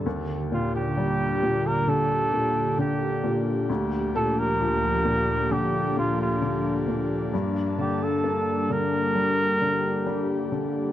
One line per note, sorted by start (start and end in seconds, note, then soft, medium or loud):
0.06 3.66 D#2 soft
0.06 3.66 D3 medium
0.06 10.92 A#3 medium
0.06 10.92 D4 medium
0.06 7.29 G4 medium
0.52 1.41 A#2 soft
0.52 0.73 F4 medium
0.76 1.69 G4 medium
0.97 2.75 G3 soft
1.43 2.31 A#2 soft
1.67 1.91 A#4 medium
1.87 2.77 D3 soft
1.87 2.79 A4 medium
2.33 3.22 A#2 soft
2.78 3.67 D3 soft
2.78 3.44 G4 medium
3.24 3.68 A#2 soft
3.69 7.29 D2 medium
3.69 7.29 D2 soft
3.69 7.29 F3 medium
4.15 5.04 A#2 soft
4.15 4.41 A4 medium
4.39 5.54 A#4 medium
4.60 6.38 F3 soft
5.05 5.95 A#2 soft
5.51 6.40 D3 soft
5.51 5.97 G4 medium
5.97 6.86 A#2 soft
5.97 6.19 F4 medium
6.22 6.85 F4 soft
6.42 7.30 D3 soft
6.88 7.32 A#2 soft
7.32 10.92 G2 soft
7.32 10.92 G3 medium
7.32 9.13 A5 medium
7.78 8.68 D3 soft
7.78 8.05 G4 medium
8.03 8.73 A4 medium
8.24 10.02 A#3 soft
8.70 9.60 D3 soft
8.70 10.53 A#4 medium
9.14 10.05 G3 soft
9.14 10.92 G4 medium
9.61 10.50 D3 soft
10.06 10.92 G3 soft
10.52 10.92 D3 soft